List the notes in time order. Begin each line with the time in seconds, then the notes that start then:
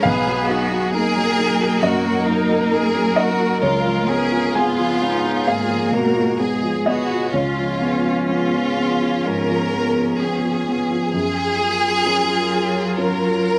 0.03 B1 F#3 B3 G#4 B4 D#5 F5 A#5
0.27 F#3
0.48 D#4 F#4 G#4
0.72 F#4
0.93 A#3 D#4 G#4 A#4
1.16 F#3
1.38 D#4
1.60 F#4
1.82 F#2 F#4 A#4 D#5
2.04 F#3
2.26 D#4
2.49 F#4
2.71 D#4 G#4
2.94 F#3
3.16 D#4 F#4 D#5
3.39 F#4
3.62 C#2 G#3 F4 G#4 C#5
3.85 F3
4.09 B3 C#4 G#4
4.32 F4
4.55 B3 F4 G#4 G#5
4.79 F3
5.02 B3 D#4
5.24 F4
5.46 G#2 A#3 F4 G#4 F5
5.70 F3
5.92 B2 F#4 A#4
6.16 F4
6.39 G#3 B3 G#4
6.63 F3
6.86 B3 F#4 D#5
7.10 F4
7.33 C#2 F3 B3 C#4 F4 G#4 C#5
7.58 F3
7.81 B3
8.05 F4
8.29 B3 F4
8.54 F3
8.77 B3
9.02 F4
9.24 G#2 A#4
9.50 F3
9.73 B3
9.97 F4
10.20 B3 G#4
10.44 F3
10.68 B3
10.91 F4
11.13 F#2 F#3 F4 G#4 A#4 C#5
12.05 C#4 F4 A#4
12.95 C#4 F4 A#4